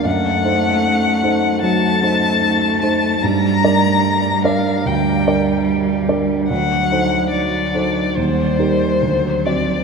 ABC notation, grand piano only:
X:1
M:4/4
L:1/8
Q:1/4=73
K:Gm
V:1 name="Grand piano"
^F,, [^DAc]2 [DAc] ^F, [DAc]2 [DAc] | G,, [DBd]2 [DBd] D,, [DBd]2 [DBd] | D,, [EAc]2 [EAc] E,, [EGB] D,, [C^Fd] |]